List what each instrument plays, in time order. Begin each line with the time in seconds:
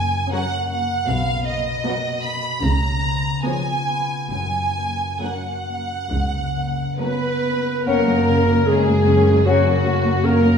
Already playing: double bass section F#1, cello section F#2, harp F#2 A#3 C#4, violin section G#5
0.32 viola section F#3 C#4, violin section F#4 A#4 F#5, harp F#4
0.70 harp A#3, violin section F#5
1.07 double bass section B1, harp B2, cello section B2, violin section F5
1.46 harp A#3, violin section D#5
1.83 viola section F#3 B3, harp F#4, violin section F#4 A#4
2.22 harp A#3, violin section B5
2.62 double bass section C#2, harp C#3, cello section C#3, violin section A#5
3.03 harp B3
3.44 viola section F3 B3, violin section C#4 G#4 G#5, harp F4
3.87 harp B3
4.31 double bass section F#1, harp F#2, cello section F#2, violin section G#5
4.77 harp A#3
5.22 viola section F#3 A#3, violin section C#4 A#4 F#5, harp F#4
5.68 harp A#3
6.11 cello section C#2, double bass section C#2, harp C#3
6.56 harp A#3
6.98 viola section F#3 A#3, french horn section B3, violin section C#4 A#4 B4, harp F#4, clarinet B4
7.44 harp A#3
7.85 double bass section F#1, cello section F#2, harp F#2, french horn section A#3, viola section A#3 C#4, bassoon C#4, clarinet A#4, violin section A#4, flute F#5
8.08 viola section F#3 A#3
8.26 harp C#3, viola section A#3 C#4
8.47 viola section F#3 A#3
8.65 french horn section G#3, viola section A#3 C#4, clarinet G#4, violin section G#4
8.87 viola section F#3 A#3
9.07 harp C#3, viola section A#3 C#4
9.27 viola section F#3 A#3
9.44 harp F#2, french horn section F#3, viola section A#3 C#4, bassoon C#4, violin section F#4, clarinet F#4
9.48 flute F#5
9.65 viola section F#3 A#3
9.84 viola section A#3 C#4, harp A#3
10.04 viola section F#3 A#3
10.21 french horn section A#3, viola section A#3 C#4, harp C#4, violin section A#4, clarinet A#4
10.43 viola section F#3 A#3